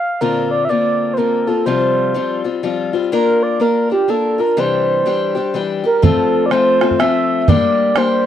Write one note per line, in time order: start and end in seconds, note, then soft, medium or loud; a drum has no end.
0.00 0.21 F5 loud
0.21 0.70 A#2 medium
0.21 0.68 D3 medium
0.21 0.68 A#3 medium
0.21 0.70 C4 medium
0.21 0.71 F4 medium
0.21 0.49 A#4 medium
0.51 0.63 D5 medium
0.65 0.71 E5 medium
0.69 1.16 D3 soft
0.69 1.16 A#3 medium
0.69 1.17 C4 medium
0.69 1.19 F4 medium
0.69 1.15 D5 medium
1.14 1.48 D3 soft
1.14 1.19 C5 medium
1.18 1.48 A#3 medium
1.18 1.47 C4 medium
1.18 1.46 F4 soft
1.18 1.49 A#4 medium
1.47 1.67 A#3 soft
1.47 1.66 C4 soft
1.47 1.66 F4 soft
1.47 1.65 A4 medium
1.66 2.15 C3 medium
1.66 2.14 F3 medium
1.66 2.14 G3 medium
1.66 2.15 C4 medium
1.66 2.16 F4 medium
1.66 2.41 C5 medium
2.14 2.45 F3 medium
2.14 2.45 G3 medium
2.14 2.44 C4 medium
2.14 2.43 F4 medium
2.44 2.62 G3 soft
2.44 2.63 C4 soft
2.44 2.63 F4 soft
2.63 2.93 F3 medium
2.63 2.94 G3 medium
2.63 2.93 C4 medium
2.63 2.92 F4 medium
2.93 3.12 G3 soft
2.93 3.12 C4 soft
2.93 3.12 F4 medium
3.12 3.59 A#3 medium
3.12 3.60 D4 medium
3.12 3.60 F4 medium
3.12 3.44 A#4 loud
3.12 3.60 A#4 medium
3.43 3.61 D5 loud
3.60 3.90 A#3 medium
3.60 3.90 D4 medium
3.60 3.90 F4 medium
3.60 3.89 A#4 loud
3.60 3.88 A#4 medium
3.90 4.07 D4 soft
3.90 4.08 F4 soft
3.90 4.11 G4 medium
3.90 4.08 A#4 soft
4.08 4.39 A#3 soft
4.08 4.39 D4 medium
4.08 4.38 F4 medium
4.08 4.42 A4 medium
4.08 4.37 A#4 medium
4.38 4.57 D4 soft
4.38 4.58 F4 soft
4.38 4.57 A#4 soft
4.38 4.61 A#4 medium
4.57 5.06 C3 medium
4.57 5.04 E3 medium
4.57 5.05 G3 medium
4.57 5.05 D4 medium
4.57 5.06 G4 medium
4.57 5.55 C5 loud
5.06 5.36 E3 medium
5.06 5.36 G3 medium
5.06 5.35 D4 medium
5.06 5.34 G4 medium
5.35 5.54 G3 soft
5.35 5.54 D4 soft
5.35 5.54 G4 soft
5.54 5.84 E3 medium
5.54 5.84 G3 medium
5.54 5.84 D4 medium
5.54 5.82 G4 medium
5.84 6.03 G3 soft
5.84 6.03 D4 soft
5.84 6.02 G4 medium
5.84 5.97 A#4 medium
5.98 6.04 A#4 medium
6.02 6.50 F3 medium
6.02 6.51 A3 medium
6.02 6.50 C4 medium
6.02 6.52 F4 medium
6.02 6.45 A4 loud
6.02 bodhran medium
6.46 6.52 D5 medium
6.51 6.81 F3 medium
6.51 6.81 A3 medium
6.51 6.81 C4 medium
6.51 6.80 F4 medium
6.51 6.99 C5 loud
6.51 bodhran medium
6.81 6.99 A3 soft
6.81 6.99 C4 soft
6.81 6.99 F4 soft
6.81 bodhran medium
6.91 bodhran soft
6.99 7.47 F3 medium
6.99 7.48 A3 medium
6.99 7.48 C4 medium
6.99 7.48 F4 medium
6.99 7.42 E5 loud
6.99 bodhran medium
7.42 7.50 E5 medium
7.48 7.94 G3 medium
7.48 7.95 A#3 medium
7.48 7.96 D4 medium
7.48 7.96 G4 medium
7.48 7.99 D5 loud
7.48 bodhran medium
7.96 8.26 G3 medium
7.96 8.26 A#3 medium
7.96 8.26 D4 medium
7.96 8.26 G4 medium
7.96 8.26 C5 loud
7.96 bodhran medium